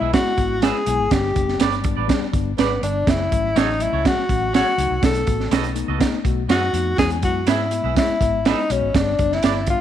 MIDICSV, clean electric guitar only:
0, 0, Header, 1, 2, 480
1, 0, Start_track
1, 0, Tempo, 488998
1, 1098, Time_signature, 4, 2, 24, 8
1, 9628, End_track
2, 0, Start_track
2, 0, Title_t, "Clean electric guitar"
2, 0, Program_c, 0, 27
2, 11, Note_on_c, 0, 76, 72
2, 17, Note_on_c, 0, 71, 61
2, 26, Note_on_c, 0, 68, 57
2, 30, Note_on_c, 0, 64, 55
2, 108, Note_off_c, 0, 76, 0
2, 110, Note_off_c, 0, 71, 0
2, 115, Note_off_c, 0, 68, 0
2, 117, Note_off_c, 0, 64, 0
2, 611, Note_on_c, 0, 64, 77
2, 616, Note_on_c, 0, 68, 73
2, 623, Note_on_c, 0, 71, 92
2, 625, Note_on_c, 0, 76, 85
2, 734, Note_off_c, 0, 64, 0
2, 736, Note_off_c, 0, 68, 0
2, 740, Note_off_c, 0, 71, 0
2, 741, Note_off_c, 0, 76, 0
2, 1570, Note_on_c, 0, 62, 77
2, 1580, Note_on_c, 0, 67, 88
2, 1584, Note_on_c, 0, 71, 84
2, 1589, Note_on_c, 0, 74, 87
2, 1693, Note_off_c, 0, 62, 0
2, 1698, Note_off_c, 0, 67, 0
2, 1700, Note_off_c, 0, 71, 0
2, 1703, Note_off_c, 0, 74, 0
2, 1930, Note_on_c, 0, 74, 57
2, 1936, Note_on_c, 0, 71, 66
2, 1942, Note_on_c, 0, 67, 52
2, 1949, Note_on_c, 0, 62, 50
2, 2027, Note_off_c, 0, 74, 0
2, 2030, Note_off_c, 0, 71, 0
2, 2033, Note_off_c, 0, 67, 0
2, 2037, Note_off_c, 0, 62, 0
2, 2530, Note_on_c, 0, 62, 72
2, 2537, Note_on_c, 0, 67, 80
2, 2543, Note_on_c, 0, 71, 75
2, 2549, Note_on_c, 0, 74, 78
2, 2653, Note_off_c, 0, 62, 0
2, 2657, Note_off_c, 0, 67, 0
2, 2659, Note_off_c, 0, 71, 0
2, 2662, Note_off_c, 0, 74, 0
2, 3491, Note_on_c, 0, 61, 85
2, 3497, Note_on_c, 0, 66, 93
2, 3502, Note_on_c, 0, 69, 98
2, 3508, Note_on_c, 0, 73, 100
2, 3613, Note_off_c, 0, 61, 0
2, 3616, Note_off_c, 0, 66, 0
2, 3619, Note_off_c, 0, 69, 0
2, 3622, Note_off_c, 0, 73, 0
2, 3858, Note_on_c, 0, 73, 61
2, 3863, Note_on_c, 0, 69, 55
2, 3869, Note_on_c, 0, 66, 58
2, 3875, Note_on_c, 0, 61, 47
2, 3951, Note_off_c, 0, 73, 0
2, 3954, Note_off_c, 0, 69, 0
2, 3956, Note_off_c, 0, 66, 0
2, 3959, Note_off_c, 0, 61, 0
2, 4451, Note_on_c, 0, 61, 80
2, 4459, Note_on_c, 0, 66, 82
2, 4462, Note_on_c, 0, 69, 81
2, 4470, Note_on_c, 0, 73, 97
2, 4573, Note_off_c, 0, 61, 0
2, 4577, Note_off_c, 0, 66, 0
2, 4579, Note_off_c, 0, 69, 0
2, 4582, Note_off_c, 0, 73, 0
2, 5412, Note_on_c, 0, 59, 93
2, 5418, Note_on_c, 0, 66, 88
2, 5423, Note_on_c, 0, 69, 94
2, 5430, Note_on_c, 0, 75, 89
2, 5534, Note_off_c, 0, 59, 0
2, 5537, Note_off_c, 0, 66, 0
2, 5539, Note_off_c, 0, 69, 0
2, 5543, Note_off_c, 0, 75, 0
2, 5775, Note_on_c, 0, 75, 68
2, 5784, Note_on_c, 0, 69, 60
2, 5788, Note_on_c, 0, 66, 58
2, 5791, Note_on_c, 0, 59, 55
2, 5869, Note_off_c, 0, 75, 0
2, 5874, Note_off_c, 0, 69, 0
2, 5875, Note_off_c, 0, 66, 0
2, 5877, Note_off_c, 0, 59, 0
2, 6368, Note_on_c, 0, 59, 77
2, 6373, Note_on_c, 0, 66, 84
2, 6381, Note_on_c, 0, 69, 79
2, 6384, Note_on_c, 0, 75, 82
2, 6492, Note_off_c, 0, 59, 0
2, 6494, Note_off_c, 0, 66, 0
2, 6498, Note_off_c, 0, 69, 0
2, 6500, Note_off_c, 0, 75, 0
2, 7331, Note_on_c, 0, 64, 93
2, 7336, Note_on_c, 0, 68, 86
2, 7341, Note_on_c, 0, 71, 87
2, 7348, Note_on_c, 0, 76, 95
2, 7453, Note_off_c, 0, 64, 0
2, 7456, Note_off_c, 0, 68, 0
2, 7459, Note_off_c, 0, 71, 0
2, 7462, Note_off_c, 0, 76, 0
2, 7695, Note_on_c, 0, 76, 58
2, 7701, Note_on_c, 0, 71, 54
2, 7708, Note_on_c, 0, 68, 50
2, 7714, Note_on_c, 0, 64, 53
2, 7790, Note_off_c, 0, 76, 0
2, 7793, Note_off_c, 0, 71, 0
2, 7796, Note_off_c, 0, 68, 0
2, 7799, Note_off_c, 0, 64, 0
2, 8298, Note_on_c, 0, 64, 80
2, 8307, Note_on_c, 0, 68, 85
2, 8313, Note_on_c, 0, 71, 95
2, 8316, Note_on_c, 0, 76, 91
2, 8417, Note_off_c, 0, 64, 0
2, 8421, Note_off_c, 0, 68, 0
2, 8424, Note_off_c, 0, 71, 0
2, 8426, Note_off_c, 0, 76, 0
2, 9256, Note_on_c, 0, 62, 79
2, 9265, Note_on_c, 0, 67, 86
2, 9269, Note_on_c, 0, 71, 85
2, 9274, Note_on_c, 0, 74, 89
2, 9376, Note_off_c, 0, 62, 0
2, 9381, Note_off_c, 0, 67, 0
2, 9383, Note_off_c, 0, 71, 0
2, 9385, Note_off_c, 0, 74, 0
2, 9628, End_track
0, 0, End_of_file